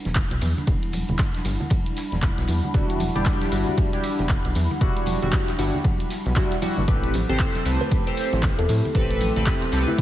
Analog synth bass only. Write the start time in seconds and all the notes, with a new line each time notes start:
0.05 E1
0.31 B1
0.41 E2
0.67 E1
1.09 E1
1.45 G1
2.12 E1
2.38 B1
2.48 E2
2.74 E1
3.16 E1
3.52 G1
4.19 E1
4.45 B1
4.55 E2
4.81 E1
5.22 E1
5.59 G1
6.26 B1
6.78 G1
6.88 A1
7.29 A1
7.66 C2
8.33 A1
8.59 E2
8.69 A2
8.95 A1
9.36 A1
9.72 C2